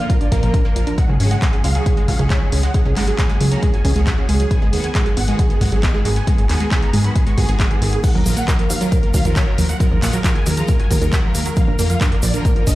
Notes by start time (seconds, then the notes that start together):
0.00 D3 F3 A#3 F4
0.10 F3 A#4, kick, closed hi-hat
0.21 D3 F3 A#3 D4 F4 D5, closed hi-hat
0.32 A#1 D3 F3 A#3 F4 A#4, kick, closed hi-hat
0.43 A#1 D3 F3 A#3 F4 A#4, closed hi-hat
0.54 D4 A#4, kick, closed hi-hat
0.65 D3 F3 A#3 F4 A#4
0.76 A#1 F3 A#4, closed hi-hat
0.87 D4 A#4, closed hi-hat
0.98 C#3 F#3 G#3 F#4 F#5, kick, closed hi-hat
1.09 C#2 F#3 G#4
1.20 G#1 C#3 F#3 G#3 C#4 F#4 G#4, open hi-hat
1.31 G#3 F#5, closed hi-hat
1.42 C#3 F#3 G#3 F#4 G#4, kick, clap, closed hi-hat
1.53 C#4 G#4, closed hi-hat
1.64 C#2 G#3 F5, open hi-hat
1.75 C#3 F#3 G#3 F#4 G#4, closed hi-hat
1.86 C#4 G#4, kick, closed hi-hat
1.97 C#3 F#3 G#3 F#4 G#4, closed hi-hat
2.08 C#2 C#3 F#3 G#3 F#4 F5, kick, open hi-hat
2.19 C#2 C#3 F#3 G#3 C#4 F#4 G#4, closed hi-hat
2.30 G#3 C#5, kick, clap, closed hi-hat
2.41 C#3 F#3 G#3 F#4 G#4
2.52 C#2 C#4 G#4, open hi-hat
2.63 G#3 F#5, closed hi-hat
2.74 C#3 F#3 A#3 F#4 G#4, kick, closed hi-hat
2.85 C#2 C#4 G#4
2.96 G#1 C#3 F#3 G#3 A#3 F#4 F#5, clap, open hi-hat
3.07 F#3 G#4, closed hi-hat
3.18 C#3 F#3 A#3 C#4 F#4 G#4, kick, clap, closed hi-hat
3.29 G#3 G#5, closed hi-hat
3.40 C#2 F#3 G#4, open hi-hat
3.51 C#3 F#3 A#3 C#4 F#4 A#5, closed hi-hat
3.63 G#3 G#4, kick, closed hi-hat
3.74 C#3 F#3 A#3 F#4 G#5, closed hi-hat
3.85 C#2 C#3 F#3 A#3 C#4 F#4 G#4, kick, open hi-hat
3.96 C#2 C#3 F#3 G#3 A#3 F#4 G#4, closed hi-hat
4.07 F#3 F#5, kick, clap, closed hi-hat
4.18 C#3 F#3 A#3 C#4 F#4 G#4
4.29 C#2 G#3 G#4, open hi-hat
4.40 F#3 G#4, closed hi-hat
4.51 D#3 G#3 B3 F#4 G#5, kick, closed hi-hat
4.62 G#1 G#3 G#4
4.73 D#2 D#3 F#3 G#3 B3 F#4 G#4, open hi-hat
4.84 B3 G#5, closed hi-hat
4.95 D#3 G#3 B3 F#4 G#4, kick, clap, closed hi-hat
5.06 F#3 G#4, closed hi-hat
5.17 G#1 B3 F#5, open hi-hat
5.28 D#3 G#3 B3 F#4 G#4, closed hi-hat
5.39 F#3 G#4, kick, closed hi-hat
5.50 D#3 G#3 B3 F#4 G#4, closed hi-hat
5.61 G#1 D#3 G#3 B3 F#4 F#5, kick, open hi-hat
5.72 G#1 D#3 F#3 G#3 B3 F#4 G#4, closed hi-hat
5.83 B3 D#5, kick, clap, closed hi-hat
5.94 D#3 G#3 B3 F#4 G#4
6.05 G#1 F#3 G#4, open hi-hat
6.16 B3 G#5, closed hi-hat
6.27 D#3 G#3 B3 F#4 G#4, kick, closed hi-hat
6.38 G#1 F#3 G#4, closed hi-hat
6.49 D#2 D#3 G#3 B3 F#4 G#5, clap, open hi-hat
6.60 G#3 G#4, closed hi-hat
6.71 D#3 F#3 G#3 B3 F#4 G#4, kick, clap, closed hi-hat
6.82 B3 A#5, closed hi-hat
6.93 G#1 G#3 G#4, open hi-hat
7.04 D#3 F#3 G#3 B3 F#4 B5, closed hi-hat
7.15 B3 G#4, kick, closed hi-hat
7.26 D#3 G#3 B3 F#4 C#6, closed hi-hat
7.37 G#1 D#3 G#3 B3 F#4 G#4, kick, open hi-hat
7.48 G#1 D#3 G#3 B3 F#4 G#4, closed hi-hat
7.59 G#3 D#6, kick, clap, closed hi-hat
7.70 D#3 G#3 B3 F#4 G#4, closed hi-hat
7.81 G#1 D#3 G#4, open hi-hat
7.93 B3 G#4, closed hi-hat
8.03 D#3 F#3 A#3 F4 F#5, kick, closed hi-hat, crash, shaker
8.14 D#2 F#3 A#4
8.25 A#1 D#3 F3 F#3 A#3 F4 A#4, open hi-hat, shaker
8.37 A#3 F#5, closed hi-hat, shaker
8.48 D#3 F#3 A#3 F4 A#4, kick, clap, closed hi-hat, shaker
8.59 F3 A#4, closed hi-hat
8.69 D#2 A#3 F5, open hi-hat, shaker
8.81 D#3 F#3 A#3 F4 A#4, closed hi-hat, shaker
8.92 F3 A#4, kick, closed hi-hat, shaker
9.03 D#3 F#3 A#3 F4 A#4, closed hi-hat
9.14 D#2 D#3 F#3 A#3 F4 F5, kick, open hi-hat, shaker
9.25 D#2 D#3 F3 F#3 A#3 F4 A#4, closed hi-hat, shaker
9.36 A#3 C#5, kick, clap, closed hi-hat, shaker
9.47 D#3 F#3 A#3 F4 A#4
9.58 D#2 F3 A#4, open hi-hat, shaker
9.69 A#3 F#5, closed hi-hat, shaker
9.80 D#3 F#3 G#3 F4 A#4, kick, closed hi-hat, shaker
9.91 D#2 F3 A#4
10.02 A#1 D#3 F#3 G#3 A#3 F4 F#5, clap, open hi-hat, shaker
10.13 F#3 A#4, closed hi-hat, shaker
10.24 D#3 F3 F#3 G#3 F4 A#4, kick, clap, closed hi-hat, shaker
10.35 A#3 G#5, closed hi-hat
10.46 D#2 F#3 A#4, open hi-hat, shaker
10.57 D#3 F3 F#3 G#3 F4 A#5, closed hi-hat, shaker
10.68 A#3 A#4, kick, closed hi-hat, shaker
10.79 D#3 F#3 G#3 F4 G#5, closed hi-hat
10.90 D#2 D#3 F3 F#3 G#3 F4 A#4, kick, open hi-hat, shaker
11.01 D#2 D#3 F#3 G#3 A#3 F4 A#4, closed hi-hat, shaker
11.12 F#3 F#5, kick, clap, closed hi-hat, shaker
11.24 D#3 F3 F#3 G#3 F4 A#4
11.35 D#2 A#3 A#4, open hi-hat, shaker
11.46 F#3 A#4, closed hi-hat, shaker
11.56 D3 F3 A#3 F4 F5, kick, closed hi-hat, shaker
11.68 A#1 D4 A#4
11.79 F2 D3 F3 A#3 F4 A#4, open hi-hat, shaker
11.90 F3 F5, closed hi-hat, shaker
12.01 D3 F3 A#3 D4 F4 A#4, kick, clap, closed hi-hat, shaker
12.12 A#3 A#4, closed hi-hat
12.22 A#1 F3 D5, open hi-hat, shaker
12.34 D3 F3 A#3 D4 F4 A#4, closed hi-hat, shaker
12.45 A#3 A#4, kick, closed hi-hat, shaker
12.56 D3 F3 A#3 F4 A#4, closed hi-hat
12.67 A#1 D3 F3 A#3 D4 F4 D#5, kick, open hi-hat, shaker